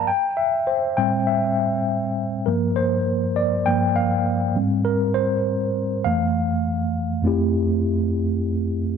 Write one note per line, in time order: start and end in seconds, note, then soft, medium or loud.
0.00 0.11 A#4 medium
0.00 0.11 D5 loud
0.00 0.11 F5 loud
0.00 0.11 A#5 loud
0.07 0.39 G5 loud
0.37 0.69 E5 medium
0.67 0.81 C5 medium
0.97 1.84 A2 medium
0.97 1.84 G3 medium
0.97 1.84 C4 medium
0.97 1.25 G5 medium
1.27 2.13 E5 medium
2.46 3.65 G2 medium
2.46 3.66 F3 medium
2.46 3.66 A#3 medium
2.46 2.78 A#4 medium
2.76 3.38 C5 medium
3.36 3.67 D5 loud
3.66 3.94 G2 soft
3.66 3.94 F3 soft
3.66 3.94 A#3 medium
3.66 3.97 G5 loud
3.96 4.52 F5 medium
4.55 6.01 G#2 medium
4.55 6.02 G3 soft
4.55 6.02 C4 medium
4.85 5.16 A#4 medium
5.14 5.71 C5 loud
6.04 6.91 F2 medium
6.04 6.91 E3 medium
6.04 6.92 A3 medium
6.04 6.91 F5 loud
7.23 8.97 F2 medium
7.23 8.97 A3 medium
7.23 8.97 C4 medium
7.23 8.97 E4 medium
7.27 8.97 G4 medium